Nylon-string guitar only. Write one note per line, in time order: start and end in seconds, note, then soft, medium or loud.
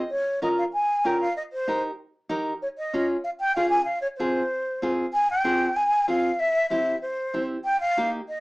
0.42 0.64 C#4 medium
0.42 0.64 F4 medium
0.42 0.64 A#4 medium
1.05 1.27 C#4 medium
1.05 1.27 F4 medium
1.05 1.27 A#4 medium
1.67 1.90 D#4 medium
1.67 1.90 G4 medium
1.67 1.90 A#4 medium
2.29 2.52 D#4 loud
2.29 2.52 G4 medium
2.29 2.53 A#4 medium
2.93 3.16 C#4 medium
2.93 3.16 F4 medium
2.93 3.16 G#4 medium
3.56 3.79 C#4 medium
3.56 3.78 F4 medium
3.56 3.79 G#4 medium
4.19 4.42 C4 medium
4.19 4.42 F4 medium
4.19 4.42 G#4 medium
4.82 5.04 C4 medium
4.82 5.05 F4 medium
4.82 5.05 G#4 medium
5.44 5.67 C4 medium
5.44 5.67 F4 medium
5.44 5.67 G#4 medium
6.08 6.30 C4 medium
6.08 6.30 F4 medium
6.08 6.30 G#4 medium
6.70 6.93 C4 medium
6.70 6.93 E4 medium
6.70 6.93 G4 medium
7.34 7.56 C4 medium
7.34 7.56 E4 medium
7.34 7.56 G4 medium
7.97 8.19 A#3 medium
7.97 8.20 D#4 medium
7.97 8.20 G4 medium